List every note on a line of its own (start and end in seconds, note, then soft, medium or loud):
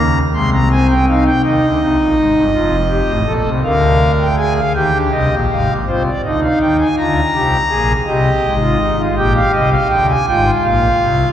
0.00 0.20 C#2 medium
0.00 0.19 C#3 medium
0.00 0.18 A#5 medium
0.34 1.28 C2 medium
0.34 1.28 C3 medium
0.34 0.57 G#3 medium
0.34 0.50 C6 medium
0.53 0.68 A#5 medium
0.71 0.94 C4 medium
0.71 0.87 G#5 medium
0.90 1.05 G5 medium
1.08 1.31 D#4 medium
1.08 1.24 F5 medium
1.26 1.41 G5 medium
1.43 1.59 D#2 medium
1.43 1.59 D#3 medium
1.43 1.66 D#4 medium
1.43 3.33 D#5 medium
1.63 1.78 D2 medium
1.63 1.78 D3 medium
1.80 1.96 C2 medium
1.80 1.96 C3 medium
1.80 2.43 D#4 medium
1.99 2.14 A#1 medium
1.99 2.14 A#2 medium
2.17 2.32 G#1 medium
2.17 2.32 G#2 medium
2.35 2.51 G1 medium
2.35 2.51 G2 medium
2.53 3.00 F1 medium
2.53 3.01 F2 medium
2.53 2.76 F4 medium
2.90 3.13 G4 medium
3.08 3.24 A1 medium
3.08 3.24 A2 medium
3.26 3.42 A#1 medium
3.26 3.42 A#2 medium
3.26 3.49 A4 medium
3.45 3.61 C2 medium
3.45 3.61 C3 medium
3.64 4.60 D2 medium
3.64 4.59 D3 medium
3.64 4.27 A#4 loud
3.64 4.11 F5 medium
4.20 4.35 G5 medium
4.37 4.60 G#4 medium
4.37 4.53 G#5 medium
4.57 4.72 F5 medium
4.75 4.91 D#2 medium
4.75 4.91 D#3 medium
4.75 5.71 G4 medium
4.75 4.98 G5 medium
4.93 5.09 D2 medium
4.93 5.09 D3 medium
5.12 5.28 C2 medium
5.12 5.28 C3 medium
5.12 5.35 D#5 medium
5.30 5.46 A#1 medium
5.30 5.47 A#2 medium
5.51 5.66 G#1 medium
5.51 5.66 G#2 medium
5.51 5.73 F5 medium
5.69 5.85 A#1 medium
5.69 5.85 A#2 medium
5.87 6.10 C2 medium
5.87 6.10 C3 medium
5.87 6.10 F4 medium
5.87 6.03 C5 medium
6.06 6.21 D5 medium
6.25 6.47 D2 medium
6.25 6.47 D3 medium
6.25 6.88 D#4 medium
6.25 6.40 D#5 medium
6.43 6.58 F5 soft
6.61 6.84 D#2 medium
6.61 6.84 D#3 medium
6.61 6.77 G5 medium
6.79 6.95 G#5 medium
6.97 7.21 D2 medium
6.97 7.21 D3 medium
6.97 7.20 F4 medium
6.97 7.92 A#5 medium
7.34 7.57 C2 medium
7.34 7.57 C3 medium
7.34 7.57 G4 medium
7.70 7.93 A#1 medium
7.70 7.93 A#2 medium
7.70 7.93 G#4 medium
8.06 8.30 C2 medium
8.06 8.30 C3 medium
8.06 8.54 G4 medium
8.06 9.02 D#5 medium
8.44 9.07 G#1 medium
8.44 9.07 G#2 medium
8.61 8.78 F4 medium
8.80 8.96 D#4 medium
8.98 9.15 F4 medium
9.17 9.40 A#1 medium
9.17 9.40 A#2 medium
9.17 10.12 G4 medium
9.17 9.33 G5 medium
9.35 9.51 F5 medium
9.53 9.76 C2 medium
9.53 9.76 C3 medium
9.53 9.69 D#5 medium
9.71 9.88 F5 medium
9.90 10.13 D2 medium
9.90 10.13 D3 medium
9.90 10.06 G5 medium
10.09 10.25 G#5 medium
10.28 10.51 G#1 medium
10.28 10.51 G#2 medium
10.28 11.32 F4 medium
10.28 10.51 G5 medium
10.65 10.88 A#1 medium
10.65 10.88 A#2 medium
10.65 11.29 F5 medium
11.01 11.25 C2 medium
11.01 11.25 C3 medium